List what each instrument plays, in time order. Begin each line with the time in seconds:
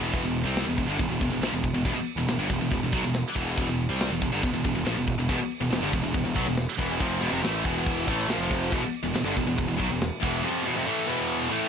Already playing: picked electric bass E1, distorted electric guitar E2 B2 E3
0.13 kick, crash
0.23 picked electric bass E1, distorted electric guitar E2 B2
0.35 crash
0.44 picked electric bass C2, distorted electric guitar C3 G3 C4
0.56 snare, crash
0.67 picked electric bass E1, distorted electric guitar E2 B2
0.78 picked electric bass E1, distorted electric guitar E2 B2, kick, crash
0.87 picked electric bass G1, distorted electric guitar G2 D3
0.99 picked electric bass E1, distorted electric guitar E2 B2, kick, crash
1.10 picked electric bass E1, distorted electric guitar E2 B2
1.21 picked electric bass E1, distorted electric guitar E2 B2, kick, crash
1.31 picked electric bass E1, distorted electric guitar E2 B2
1.41 picked electric bass A#1, distorted electric guitar A#2, snare, crash
1.45 distorted electric guitar F3
1.52 picked electric bass E1, distorted electric guitar E2 B2
1.64 kick, crash
1.74 picked electric bass E1, distorted electric guitar E2 B2
1.85 picked electric bass E1, distorted electric guitar E2 B2, kick, crash
1.95 muted picked electric bass stroke, muted distorted electric guitar stroke
2.07 crash
2.16 picked electric bass E1, distorted electric guitar E2 B2
2.27 picked electric bass E1, distorted electric guitar E2 B2, snare, crash
2.38 picked electric bass G1, distorted electric guitar G2 D3
2.50 picked electric bass E1, distorted electric guitar E2 B2, kick, crash
2.60 picked electric bass E1, distorted electric guitar E2 B2
2.71 picked electric bass E1, distorted electric guitar E2 B2, kick, crash
2.82 picked electric bass E1, distorted electric guitar E2 B2
2.93 picked electric bass B1, distorted electric guitar B2 F#3, kick, crash
3.03 picked electric bass E1, distorted electric guitar E2 B2
3.14 snare, crash
3.35 picked electric bass E1, distorted electric guitar E2 B2 E3, kick, crash
3.57 kick, crash
3.68 picked electric bass E1, distorted electric guitar E2 B2
3.79 crash
3.89 picked electric bass C2, distorted electric guitar C3 G3 C4
4.00 snare, crash
4.10 picked electric bass E1, distorted electric guitar E2 B2
4.21 picked electric bass E1, distorted electric guitar E2 B2, kick, crash
4.32 picked electric bass G1, distorted electric guitar G2 D3
4.43 picked electric bass E1, distorted electric guitar E2 B2, kick, crash
4.52 picked electric bass E1, distorted electric guitar E2 B2
4.64 picked electric bass E1, distorted electric guitar E2 B2, kick, crash
4.75 picked electric bass E1, distorted electric guitar E2 B2
4.85 picked electric bass A#1, distorted electric guitar A#2 F3, snare, crash
4.96 picked electric bass E1, distorted electric guitar E2 B2
5.08 kick, crash
5.18 picked electric bass E1, distorted electric guitar E2 B2
5.29 picked electric bass E1, distorted electric guitar E2 B2, kick, crash
5.40 muted distorted electric guitar stroke, muted picked electric bass stroke
5.51 crash
5.61 picked electric bass E1, distorted electric guitar E2 B2
5.71 picked electric bass E1, distorted electric guitar E2 B2, snare, crash
5.82 picked electric bass G1, distorted electric guitar G2 D3
5.93 picked electric bass E1, distorted electric guitar E2 B2, kick, crash
6.03 picked electric bass E1, distorted electric guitar E2 B2
6.14 picked electric bass E1, distorted electric guitar E2 B2, kick, crash
6.23 picked electric bass E1, distorted electric guitar E2 B2
6.36 picked electric bass B1, distorted electric guitar B2 F#3, kick, crash
6.46 picked electric bass E1, distorted electric guitar E2 B2
6.57 snare, crash
6.79 picked electric bass E1, distorted electric guitar E2 B2 E3, kick, crash
6.98 picked electric bass F1, distorted electric guitar F2 C3 F3, kick, crash
7.21 picked electric bass E1, distorted electric guitar E2 B2, crash
7.31 picked electric bass F1, distorted electric guitar F2 C3
7.42 picked electric bass A1, distorted electric guitar A2 E3 A3, snare, crash
7.64 distorted electric guitar E2 B2 E3, kick, crash
7.86 kick, crash
8.08 picked electric bass A1, distorted electric guitar A2 E3 A3, kick, crash
8.28 picked electric bass A#1, distorted electric guitar A#2 F3, snare, crash
8.39 picked electric bass F1, distorted electric guitar F2 C3 F3
8.50 kick, crash
8.72 picked electric bass E1, distorted electric guitar E2 B2, kick, crash
8.82 muted distorted electric guitar stroke, muted picked electric bass stroke
8.94 crash
9.03 picked electric bass E1, distorted electric guitar E2 B2
9.13 picked electric bass E1, distorted electric guitar E2 B2, snare, crash
9.24 picked electric bass G1, distorted electric guitar G2 D3
9.36 picked electric bass E1, distorted electric guitar E2 B2, kick, crash
9.46 picked electric bass E1, distorted electric guitar E2 B2
9.57 picked electric bass E1, distorted electric guitar E2 B2, kick, crash
9.68 picked electric bass E1, distorted electric guitar E2 B2
9.77 picked electric bass B1, distorted electric guitar B2 F#3, kick, crash
9.89 picked electric bass E1, distorted electric guitar E2 B2
10.01 snare, crash
10.20 picked electric bass E1, distorted electric guitar E2 B2 E3, kick, crash
10.42 distorted electric guitar F2 C3 F3
10.63 distorted electric guitar E2 B2
10.73 distorted electric guitar F2 C3
10.84 distorted electric guitar A2 E3 A3
11.06 distorted electric guitar E2 B2 E3
11.49 distorted electric guitar A2 E3 A3